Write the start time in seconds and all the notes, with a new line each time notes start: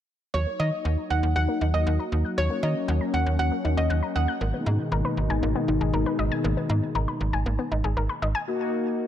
0.34 D#2 F#3 A#3 D#4 C#5
0.47 A#3
0.59 D#3 D#4 D#5
0.85 D#2 F#5
0.97 A#5
1.10 D#2 F#5
1.23 D#2 F#6
1.36 D#2 F#3 F#5
1.48 A#3
1.61 D#2 D#4
1.74 D#2 F#4 D#5
1.87 D#2 F#5
1.99 A#5
2.12 D#2 D#6
2.25 F#6
2.37 D#2 F#3 C#4 C#5
2.50 A#3
2.63 D#3 D#4 D#5
2.88 D#2 F#5
3.01 A#5
3.14 D#2 F#5
3.26 D#2 F#6
3.39 D#2 F#3 F#5
3.52 A#3
3.64 D#2 D#4
3.77 D#2 F#4 D#5
3.90 D#2 F#5
4.03 A#5
4.15 D#2 F#5 D#6
4.28 F#6
4.41 G#1 B2 D#3 G#3 A#3 D#4
4.54 B3
4.66 G#2 D#4
4.92 G#1 A#4
5.05 B4
5.17 G#1
5.30 G#1 G#5
5.43 G#1 A#3
5.55 B3
5.68 G#1 D#4
5.81 G#1 G#4
5.93 G#1 A#4
6.06 B4
6.19 G#1 D#5
6.32 G#5
6.44 G#1 A#3
6.57 B3
6.69 G#2 D#4
6.95 G#1 A#4
7.08 B4
7.21 G#1
7.33 G#1 G#5
7.46 G#1 A#3
7.59 B3
7.71 G#1 D#4
7.84 G#1 G#4
7.97 G#1 A#4
8.09 B4
8.22 G#1 D#5
8.35 G#5
8.47 A#3 D#4 F#4